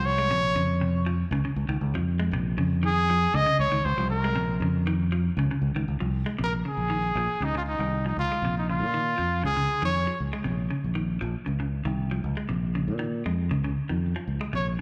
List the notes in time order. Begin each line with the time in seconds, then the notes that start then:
Already playing: C2 F3
0.05 C#5
0.18 G#3
0.31 A#1 C3
0.55 F2 C#3
0.81 C3
1.06 F3
1.31 C#2 C#3
1.45 C#3
1.56 C#2
1.68 C#2 D#3
1.81 C#2
1.94 F2 F3
2.20 G#3
2.31 A#1 C3
2.57 F2 C#3
2.83 D#3 G#4
3.10 F3
3.34 C#2 C#3 D#5
3.46 C#3
3.59 C#2 C#5
3.72 C#2 D#3
3.85 C#2 C5
3.97 C2 F3
4.10 A#4
4.24 G#3
4.35 A#1 C3
4.60 F2 C#3
4.87 D#3
5.12 F3
5.37 C#2 C#3
5.51 C#3
5.62 C#2
5.75 C#2 D#3
5.88 C#2
6.00 C2 F3
6.26 G#3
6.38 A#1 C3
6.43 A#4
6.65 C#3 G#4
6.77 A#1
6.90 D#3
7.15 A#1 F3
7.40 C#2 C#3 D#4
7.55 C#3 F4
7.68 D#4
7.79 C2 D#3
8.06 F3 D#4
8.17 C#2 F4
8.32 G#3
8.42 A#1 C3
8.58 D#4
8.69 C#3 F4
8.80 A#2
8.94 D#3
9.18 F2 F3
9.43 C#2 C#3 G#4
9.57 C#3
9.82 F2 D#3 C#5
10.07 F3
10.20 C#2
10.33 G#3
10.44 A#1 C3
10.70 C#3
10.84 A#1
10.95 D#3
11.21 A#1 F3
11.46 C#2 C#3
11.60 C#3
11.85 C2 D#3
12.11 F3
12.24 C#2
12.37 G#3
12.49 A#1 C3
12.75 C#3
12.88 A#2
12.99 D#3
13.26 F2 G#3
13.51 C#2 C#3
13.64 C#3
13.89 F2 D#3
14.16 F3
14.27 C#2
14.41 G#3
14.53 A#1 C3 C#5